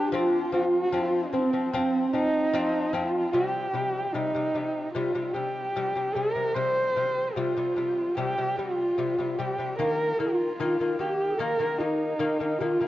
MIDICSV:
0, 0, Header, 1, 4, 480
1, 0, Start_track
1, 0, Tempo, 806452
1, 70, Time_signature, 4, 2, 24, 8
1, 7664, End_track
2, 0, Start_track
2, 0, Title_t, "Horsehead fiddle"
2, 0, Program_c, 0, 110
2, 0, Note_on_c, 0, 67, 92
2, 64, Note_off_c, 0, 67, 0
2, 68, Note_on_c, 0, 65, 99
2, 318, Note_off_c, 0, 65, 0
2, 318, Note_on_c, 0, 66, 99
2, 383, Note_off_c, 0, 66, 0
2, 383, Note_on_c, 0, 65, 99
2, 789, Note_on_c, 0, 60, 81
2, 798, Note_off_c, 0, 65, 0
2, 1263, Note_off_c, 0, 60, 0
2, 1266, Note_on_c, 0, 63, 91
2, 1745, Note_on_c, 0, 65, 94
2, 1754, Note_off_c, 0, 63, 0
2, 1982, Note_on_c, 0, 67, 81
2, 1991, Note_off_c, 0, 65, 0
2, 2457, Note_on_c, 0, 63, 78
2, 2466, Note_off_c, 0, 67, 0
2, 2932, Note_off_c, 0, 63, 0
2, 2936, Note_on_c, 0, 65, 78
2, 3175, Note_on_c, 0, 67, 76
2, 3184, Note_off_c, 0, 65, 0
2, 3660, Note_on_c, 0, 70, 81
2, 3669, Note_off_c, 0, 67, 0
2, 3896, Note_on_c, 0, 72, 86
2, 3905, Note_off_c, 0, 70, 0
2, 4384, Note_on_c, 0, 65, 76
2, 4393, Note_off_c, 0, 72, 0
2, 4852, Note_on_c, 0, 67, 83
2, 4861, Note_off_c, 0, 65, 0
2, 5100, Note_on_c, 0, 65, 81
2, 5109, Note_off_c, 0, 67, 0
2, 5583, Note_on_c, 0, 67, 75
2, 5592, Note_off_c, 0, 65, 0
2, 5822, Note_off_c, 0, 67, 0
2, 5826, Note_on_c, 0, 70, 84
2, 6064, Note_on_c, 0, 65, 86
2, 6073, Note_off_c, 0, 70, 0
2, 6549, Note_on_c, 0, 67, 74
2, 6558, Note_off_c, 0, 65, 0
2, 6776, Note_on_c, 0, 70, 82
2, 6785, Note_off_c, 0, 67, 0
2, 7015, Note_on_c, 0, 63, 69
2, 7024, Note_off_c, 0, 70, 0
2, 7490, Note_on_c, 0, 65, 74
2, 7499, Note_off_c, 0, 63, 0
2, 7664, Note_off_c, 0, 65, 0
2, 7664, End_track
3, 0, Start_track
3, 0, Title_t, "Xiao"
3, 0, Program_c, 1, 77
3, 0, Note_on_c, 1, 67, 79
3, 73, Note_off_c, 1, 67, 0
3, 73, Note_on_c, 1, 67, 72
3, 100, Note_on_c, 1, 65, 78
3, 106, Note_off_c, 1, 67, 0
3, 631, Note_off_c, 1, 65, 0
3, 788, Note_on_c, 1, 60, 61
3, 824, Note_on_c, 1, 63, 48
3, 833, Note_off_c, 1, 60, 0
3, 869, Note_on_c, 1, 60, 67
3, 878, Note_off_c, 1, 63, 0
3, 1746, Note_off_c, 1, 60, 0
3, 5822, Note_on_c, 1, 70, 74
3, 6048, Note_off_c, 1, 70, 0
3, 6063, Note_on_c, 1, 65, 70
3, 6401, Note_off_c, 1, 65, 0
3, 6420, Note_on_c, 1, 65, 65
3, 6530, Note_off_c, 1, 65, 0
3, 6533, Note_on_c, 1, 67, 64
3, 6775, Note_on_c, 1, 70, 69
3, 6784, Note_off_c, 1, 67, 0
3, 7017, Note_on_c, 1, 65, 62
3, 7026, Note_off_c, 1, 70, 0
3, 7038, Note_on_c, 1, 63, 67
3, 7044, Note_off_c, 1, 65, 0
3, 7493, Note_on_c, 1, 67, 56
3, 7502, Note_off_c, 1, 63, 0
3, 7518, Note_on_c, 1, 65, 61
3, 7524, Note_off_c, 1, 67, 0
3, 7664, Note_off_c, 1, 65, 0
3, 7664, End_track
4, 0, Start_track
4, 0, Title_t, "Lute"
4, 0, Program_c, 2, 24
4, 71, Note_on_c, 2, 53, 88
4, 79, Note_on_c, 2, 60, 100
4, 262, Note_off_c, 2, 53, 0
4, 266, Note_off_c, 2, 60, 0
4, 310, Note_on_c, 2, 53, 70
4, 318, Note_on_c, 2, 60, 76
4, 501, Note_off_c, 2, 53, 0
4, 505, Note_off_c, 2, 60, 0
4, 548, Note_on_c, 2, 53, 88
4, 556, Note_on_c, 2, 60, 92
4, 741, Note_off_c, 2, 53, 0
4, 744, Note_off_c, 2, 60, 0
4, 789, Note_on_c, 2, 53, 63
4, 795, Note_on_c, 2, 60, 69
4, 885, Note_off_c, 2, 53, 0
4, 888, Note_off_c, 2, 60, 0
4, 910, Note_on_c, 2, 53, 61
4, 914, Note_on_c, 2, 60, 64
4, 1005, Note_off_c, 2, 53, 0
4, 1007, Note_off_c, 2, 60, 0
4, 1030, Note_on_c, 2, 53, 87
4, 1036, Note_on_c, 2, 60, 101
4, 1221, Note_off_c, 2, 53, 0
4, 1224, Note_off_c, 2, 60, 0
4, 1268, Note_on_c, 2, 53, 61
4, 1274, Note_on_c, 2, 60, 70
4, 1460, Note_off_c, 2, 53, 0
4, 1463, Note_off_c, 2, 60, 0
4, 1508, Note_on_c, 2, 53, 99
4, 1515, Note_on_c, 2, 60, 114
4, 1700, Note_off_c, 2, 53, 0
4, 1703, Note_off_c, 2, 60, 0
4, 1744, Note_on_c, 2, 53, 81
4, 1751, Note_on_c, 2, 60, 95
4, 1938, Note_off_c, 2, 53, 0
4, 1942, Note_off_c, 2, 60, 0
4, 1984, Note_on_c, 2, 48, 72
4, 1990, Note_on_c, 2, 55, 80
4, 2178, Note_off_c, 2, 48, 0
4, 2181, Note_off_c, 2, 55, 0
4, 2224, Note_on_c, 2, 48, 58
4, 2229, Note_on_c, 2, 55, 60
4, 2418, Note_off_c, 2, 48, 0
4, 2420, Note_off_c, 2, 55, 0
4, 2465, Note_on_c, 2, 48, 66
4, 2470, Note_on_c, 2, 55, 79
4, 2563, Note_off_c, 2, 48, 0
4, 2565, Note_off_c, 2, 55, 0
4, 2586, Note_on_c, 2, 48, 54
4, 2593, Note_on_c, 2, 55, 56
4, 2683, Note_off_c, 2, 48, 0
4, 2687, Note_off_c, 2, 55, 0
4, 2703, Note_on_c, 2, 48, 48
4, 2710, Note_on_c, 2, 55, 59
4, 2898, Note_off_c, 2, 48, 0
4, 2901, Note_off_c, 2, 55, 0
4, 2945, Note_on_c, 2, 48, 74
4, 2951, Note_on_c, 2, 55, 85
4, 3042, Note_off_c, 2, 48, 0
4, 3046, Note_off_c, 2, 55, 0
4, 3063, Note_on_c, 2, 48, 53
4, 3068, Note_on_c, 2, 55, 58
4, 3162, Note_off_c, 2, 48, 0
4, 3164, Note_off_c, 2, 55, 0
4, 3181, Note_on_c, 2, 48, 54
4, 3189, Note_on_c, 2, 55, 55
4, 3377, Note_off_c, 2, 48, 0
4, 3381, Note_off_c, 2, 55, 0
4, 3428, Note_on_c, 2, 48, 64
4, 3433, Note_on_c, 2, 55, 78
4, 3524, Note_off_c, 2, 48, 0
4, 3526, Note_off_c, 2, 55, 0
4, 3544, Note_on_c, 2, 48, 58
4, 3551, Note_on_c, 2, 55, 57
4, 3642, Note_off_c, 2, 48, 0
4, 3646, Note_off_c, 2, 55, 0
4, 3663, Note_on_c, 2, 48, 63
4, 3668, Note_on_c, 2, 55, 65
4, 3762, Note_off_c, 2, 48, 0
4, 3764, Note_off_c, 2, 55, 0
4, 3781, Note_on_c, 2, 48, 53
4, 3787, Note_on_c, 2, 55, 55
4, 3881, Note_off_c, 2, 48, 0
4, 3884, Note_off_c, 2, 55, 0
4, 3902, Note_on_c, 2, 48, 68
4, 3907, Note_on_c, 2, 55, 79
4, 4097, Note_off_c, 2, 48, 0
4, 4100, Note_off_c, 2, 55, 0
4, 4144, Note_on_c, 2, 48, 58
4, 4149, Note_on_c, 2, 55, 62
4, 4338, Note_off_c, 2, 48, 0
4, 4341, Note_off_c, 2, 55, 0
4, 4382, Note_on_c, 2, 48, 70
4, 4387, Note_on_c, 2, 55, 83
4, 4481, Note_off_c, 2, 48, 0
4, 4484, Note_off_c, 2, 55, 0
4, 4504, Note_on_c, 2, 48, 55
4, 4509, Note_on_c, 2, 55, 63
4, 4602, Note_off_c, 2, 48, 0
4, 4605, Note_off_c, 2, 55, 0
4, 4622, Note_on_c, 2, 48, 52
4, 4630, Note_on_c, 2, 55, 57
4, 4817, Note_off_c, 2, 48, 0
4, 4821, Note_off_c, 2, 55, 0
4, 4862, Note_on_c, 2, 48, 85
4, 4867, Note_on_c, 2, 55, 83
4, 4961, Note_off_c, 2, 48, 0
4, 4964, Note_off_c, 2, 55, 0
4, 4986, Note_on_c, 2, 48, 56
4, 4989, Note_on_c, 2, 55, 62
4, 5083, Note_off_c, 2, 48, 0
4, 5085, Note_off_c, 2, 55, 0
4, 5104, Note_on_c, 2, 48, 47
4, 5111, Note_on_c, 2, 55, 60
4, 5298, Note_off_c, 2, 48, 0
4, 5302, Note_off_c, 2, 55, 0
4, 5344, Note_on_c, 2, 48, 65
4, 5348, Note_on_c, 2, 55, 73
4, 5442, Note_off_c, 2, 48, 0
4, 5444, Note_off_c, 2, 55, 0
4, 5466, Note_on_c, 2, 48, 54
4, 5474, Note_on_c, 2, 55, 63
4, 5563, Note_off_c, 2, 48, 0
4, 5567, Note_off_c, 2, 55, 0
4, 5586, Note_on_c, 2, 48, 64
4, 5592, Note_on_c, 2, 55, 72
4, 5683, Note_off_c, 2, 48, 0
4, 5686, Note_off_c, 2, 55, 0
4, 5704, Note_on_c, 2, 48, 50
4, 5711, Note_on_c, 2, 55, 64
4, 5802, Note_off_c, 2, 48, 0
4, 5806, Note_off_c, 2, 55, 0
4, 5825, Note_on_c, 2, 51, 80
4, 5830, Note_on_c, 2, 58, 86
4, 6019, Note_off_c, 2, 51, 0
4, 6021, Note_off_c, 2, 58, 0
4, 6065, Note_on_c, 2, 51, 53
4, 6070, Note_on_c, 2, 58, 64
4, 6258, Note_off_c, 2, 51, 0
4, 6261, Note_off_c, 2, 58, 0
4, 6307, Note_on_c, 2, 51, 74
4, 6312, Note_on_c, 2, 58, 89
4, 6403, Note_off_c, 2, 51, 0
4, 6406, Note_off_c, 2, 58, 0
4, 6430, Note_on_c, 2, 51, 55
4, 6436, Note_on_c, 2, 58, 58
4, 6524, Note_off_c, 2, 51, 0
4, 6528, Note_off_c, 2, 58, 0
4, 6542, Note_on_c, 2, 51, 57
4, 6550, Note_on_c, 2, 58, 58
4, 6737, Note_off_c, 2, 51, 0
4, 6740, Note_off_c, 2, 58, 0
4, 6781, Note_on_c, 2, 51, 84
4, 6787, Note_on_c, 2, 58, 92
4, 6880, Note_off_c, 2, 51, 0
4, 6883, Note_off_c, 2, 58, 0
4, 6900, Note_on_c, 2, 51, 58
4, 6906, Note_on_c, 2, 58, 66
4, 6999, Note_off_c, 2, 51, 0
4, 7002, Note_off_c, 2, 58, 0
4, 7021, Note_on_c, 2, 51, 54
4, 7027, Note_on_c, 2, 58, 56
4, 7215, Note_off_c, 2, 51, 0
4, 7219, Note_off_c, 2, 58, 0
4, 7259, Note_on_c, 2, 51, 79
4, 7264, Note_on_c, 2, 58, 82
4, 7358, Note_off_c, 2, 51, 0
4, 7361, Note_off_c, 2, 58, 0
4, 7382, Note_on_c, 2, 51, 57
4, 7389, Note_on_c, 2, 58, 59
4, 7480, Note_off_c, 2, 51, 0
4, 7483, Note_off_c, 2, 58, 0
4, 7502, Note_on_c, 2, 51, 64
4, 7507, Note_on_c, 2, 58, 63
4, 7600, Note_off_c, 2, 51, 0
4, 7602, Note_off_c, 2, 58, 0
4, 7621, Note_on_c, 2, 51, 52
4, 7627, Note_on_c, 2, 58, 63
4, 7664, Note_off_c, 2, 51, 0
4, 7664, Note_off_c, 2, 58, 0
4, 7664, End_track
0, 0, End_of_file